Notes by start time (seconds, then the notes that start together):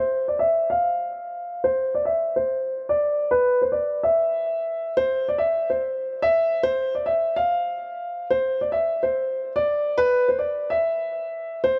Already playing: C5
0.28 D5
0.39 E5
0.70 F5
1.64 C5
1.95 D5
2.05 E5
2.36 C5
2.89 D5
3.31 B4
3.62 C5
3.72 D5
4.03 E5
4.97 C5
5.28 D5
5.38 E5
5.70 C5
6.22 E5
6.63 C5
6.95 D5
7.06 E5
7.36 F5
8.30 C5
8.61 D5
8.72 E5
9.03 C5
9.56 D5
9.98 B4
10.28 C5
10.39 D5
10.70 E5
11.64 C5